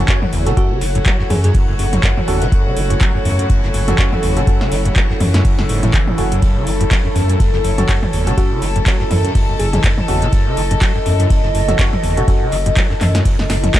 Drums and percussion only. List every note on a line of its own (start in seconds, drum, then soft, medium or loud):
0.08 kick loud
0.08 snare loud
0.08 clap loud
0.08 closed hi-hat medium
0.08 ride medium
0.22 mid tom medium
0.22 ride soft
0.33 open hi-hat medium
0.33 ride medium
0.46 snare medium
0.46 closed hi-hat medium
0.57 kick loud
0.57 closed hi-hat medium
0.57 ride medium
0.81 snare medium
0.81 open hi-hat loud
0.81 ride medium
0.95 closed hi-hat medium
1.06 kick loud
1.06 snare loud
1.06 clap loud
1.06 closed hi-hat medium
1.06 ride medium
1.19 snare soft
1.30 open hi-hat loud
1.30 mid tom loud
1.30 ride medium
1.44 snare medium
1.44 closed hi-hat medium
1.54 kick loud
1.54 closed hi-hat medium
1.54 open hi-hat medium
1.79 open hi-hat loud
1.79 ride medium
1.93 snare soft
1.93 closed hi-hat medium
1.93 mid tom medium
2.03 kick loud
2.03 snare loud
2.03 clap loud
2.03 closed hi-hat medium
2.03 ride medium
2.17 mid tom medium
2.17 ride soft
2.28 open hi-hat loud
2.28 ride medium
2.42 snare medium
2.42 closed hi-hat medium
2.52 kick loud
2.52 closed hi-hat soft
2.52 ride medium
2.76 open hi-hat loud
2.76 ride medium
2.90 closed hi-hat medium
3.00 kick loud
3.00 snare loud
3.00 clap loud
3.00 closed hi-hat medium
3.00 ride medium
3.15 ride soft
3.25 open hi-hat loud
3.25 ride medium
3.39 closed hi-hat medium
3.49 kick loud
3.49 closed hi-hat medium
3.49 ride medium
3.63 snare soft
3.74 open hi-hat loud
3.74 ride medium
3.88 snare soft
3.88 closed hi-hat medium
3.88 mid tom loud
3.98 kick loud
3.98 snare loud
3.98 clap loud
3.98 closed hi-hat medium
3.98 ride medium
4.12 mid tom loud
4.12 ride soft
4.23 open hi-hat loud
4.23 ride medium
4.37 snare medium
4.37 closed hi-hat medium
4.47 kick loud
4.47 closed hi-hat soft
4.47 ride medium
4.61 snare medium
4.72 snare medium
4.72 open hi-hat loud
4.72 ride medium
4.85 closed hi-hat medium
4.96 kick loud
4.96 snare loud
4.96 clap loud
4.96 closed hi-hat medium
4.96 ride loud
5.10 snare medium
5.20 open hi-hat loud
5.20 mid tom loud
5.20 ride medium
5.34 snare medium
5.34 closed hi-hat medium
5.45 kick loud
5.45 closed hi-hat medium
5.45 open hi-hat medium
5.59 snare medium
5.69 open hi-hat loud
5.69 ride medium
5.83 snare soft
5.83 closed hi-hat medium
5.83 mid tom loud
5.93 kick loud
5.93 snare loud
5.93 clap loud
5.93 closed hi-hat medium
5.93 ride medium
6.07 mid tom loud
6.07 ride soft
6.18 open hi-hat loud
6.18 ride medium
6.32 closed hi-hat medium
6.42 kick loud
6.42 closed hi-hat soft
6.42 ride medium
6.67 open hi-hat loud
6.67 ride medium
6.81 closed hi-hat medium
6.91 kick loud
6.91 snare loud
6.91 clap loud
6.91 closed hi-hat medium
6.91 ride loud
6.91 ride medium
7.05 ride soft
7.16 open hi-hat loud
7.16 ride medium
7.29 closed hi-hat medium
7.40 kick loud
7.40 closed hi-hat medium
7.40 ride medium
7.53 snare medium
7.64 open hi-hat loud
7.64 ride medium
7.78 snare soft
7.78 closed hi-hat medium
7.78 mid tom loud
7.89 kick loud
7.89 snare loud
7.89 clap loud
7.89 closed hi-hat medium
7.89 ride medium
8.03 mid tom loud
8.03 ride soft
8.13 open hi-hat medium
8.13 ride medium
8.27 snare soft
8.27 closed hi-hat medium
8.37 kick loud
8.37 closed hi-hat soft
8.37 ride medium
8.62 snare medium
8.62 open hi-hat loud
8.62 ride medium
8.76 closed hi-hat medium
8.86 kick loud
8.86 snare loud
8.86 clap loud
8.86 closed hi-hat medium
8.86 ride loud
8.86 ride medium
9.00 snare medium
9.11 open hi-hat medium
9.11 mid tom loud
9.11 ride medium
9.25 snare medium
9.25 closed hi-hat medium
9.35 kick loud
9.35 closed hi-hat medium
9.35 open hi-hat medium
9.35 ride medium
9.59 open hi-hat loud
9.59 ride medium
9.73 snare soft
9.73 closed hi-hat medium
9.73 mid tom loud
9.83 kick loud
9.83 snare loud
9.83 clap loud
9.83 closed hi-hat medium
9.83 ride medium
9.98 mid tom medium
9.98 ride soft
10.07 open hi-hat medium
10.07 ride medium
10.22 snare medium
10.22 closed hi-hat medium
10.32 kick loud
10.32 closed hi-hat medium
10.32 ride medium
10.57 open hi-hat loud
10.57 ride medium
10.71 closed hi-hat medium
10.81 kick loud
10.81 snare loud
10.81 clap loud
10.81 closed hi-hat medium
10.81 ride medium
10.95 ride soft
11.05 open hi-hat medium
11.05 ride medium
11.19 snare soft
11.19 closed hi-hat medium
11.30 kick loud
11.30 closed hi-hat medium
11.30 ride medium
11.44 snare medium
11.54 open hi-hat loud
11.54 ride medium
11.68 snare soft
11.68 closed hi-hat medium
11.68 mid tom loud
11.79 kick loud
11.79 snare loud
11.79 clap loud
11.79 closed hi-hat medium
11.79 ride medium
11.93 mid tom medium
11.93 ride soft
12.03 open hi-hat medium
12.03 ride medium
12.17 closed hi-hat medium
12.28 kick loud
12.28 closed hi-hat medium
12.28 ride medium
12.52 snare medium
12.52 open hi-hat loud
12.52 ride medium
12.66 closed hi-hat medium
12.76 kick loud
12.76 snare loud
12.76 clap loud
12.76 closed hi-hat medium
12.76 ride loud
12.76 ride medium
12.91 snare medium
13.01 snare loud
13.01 clap medium
13.01 open hi-hat medium
13.01 mid tom medium
13.01 ride medium
13.15 snare medium
13.15 closed hi-hat medium
13.25 kick loud
13.25 closed hi-hat medium
13.25 open hi-hat medium
13.25 ride medium
13.39 snare medium
13.49 snare loud
13.49 snare medium
13.49 open hi-hat loud
13.49 ride medium
13.64 closed hi-hat medium
13.64 mid tom medium
13.64 ride soft
13.74 kick loud
13.74 snare loud
13.74 snare medium
13.74 clap loud
13.74 closed hi-hat medium
13.74 ride medium